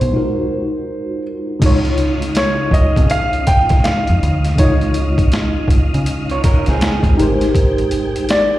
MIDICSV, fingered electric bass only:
0, 0, Header, 1, 3, 480
1, 0, Start_track
1, 0, Tempo, 740741
1, 1052, Time_signature, 4, 2, 24, 8
1, 5565, End_track
2, 0, Start_track
2, 0, Title_t, "Fingered electric bass"
2, 0, Program_c, 0, 33
2, 8, Note_on_c, 0, 47, 91
2, 82, Note_off_c, 0, 47, 0
2, 1051, Note_on_c, 0, 37, 98
2, 1658, Note_off_c, 0, 37, 0
2, 1763, Note_on_c, 0, 37, 85
2, 1925, Note_on_c, 0, 49, 96
2, 1935, Note_off_c, 0, 37, 0
2, 2208, Note_off_c, 0, 49, 0
2, 2402, Note_on_c, 0, 37, 74
2, 2479, Note_off_c, 0, 37, 0
2, 2654, Note_on_c, 0, 41, 90
2, 2725, Note_off_c, 0, 41, 0
2, 2740, Note_on_c, 0, 38, 96
2, 2944, Note_off_c, 0, 38, 0
2, 2970, Note_on_c, 0, 37, 112
2, 3577, Note_off_c, 0, 37, 0
2, 3683, Note_on_c, 0, 37, 95
2, 3818, Note_off_c, 0, 37, 0
2, 3850, Note_on_c, 0, 49, 102
2, 4131, Note_off_c, 0, 49, 0
2, 4328, Note_on_c, 0, 37, 82
2, 4402, Note_off_c, 0, 37, 0
2, 4558, Note_on_c, 0, 39, 96
2, 4636, Note_off_c, 0, 39, 0
2, 4654, Note_on_c, 0, 32, 99
2, 5407, Note_off_c, 0, 32, 0
2, 5565, End_track
3, 0, Start_track
3, 0, Title_t, "Muted fingered electric bass strokes"
3, 2255, Note_on_c, 9, 29, 47
3, 2320, Note_off_c, 9, 29, 0
3, 4177, Note_on_c, 9, 29, 49
3, 4242, Note_off_c, 9, 29, 0
3, 4419, Note_on_c, 9, 29, 46
3, 4484, Note_off_c, 9, 29, 0
3, 5565, End_track
0, 0, End_of_file